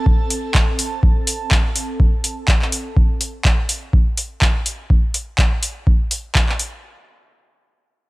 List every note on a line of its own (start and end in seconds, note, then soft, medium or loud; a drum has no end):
0.00 2.97 C4 medium
0.00 2.97 A4 medium
0.00 2.97 A5 medium
0.06 kick loud
0.30 open hi-hat medium
0.55 kick loud
0.55 clap loud
0.79 open hi-hat loud
1.03 kick loud
1.27 open hi-hat loud
1.51 kick loud
1.51 clap loud
1.76 open hi-hat loud
2.00 kick loud
2.24 open hi-hat medium
2.48 kick loud
2.48 clap loud
2.62 clap soft
2.72 open hi-hat medium
2.97 kick loud
3.21 open hi-hat medium
3.45 kick loud
3.45 clap loud
3.69 open hi-hat medium
3.93 kick loud
4.17 open hi-hat medium
4.42 kick loud
4.42 clap loud
4.66 open hi-hat medium
4.90 kick loud
5.14 open hi-hat medium
5.38 kick loud
5.38 clap loud
5.63 open hi-hat medium
5.87 kick loud
6.11 open hi-hat medium
6.35 kick loud
6.35 clap loud
6.49 clap soft
6.59 open hi-hat medium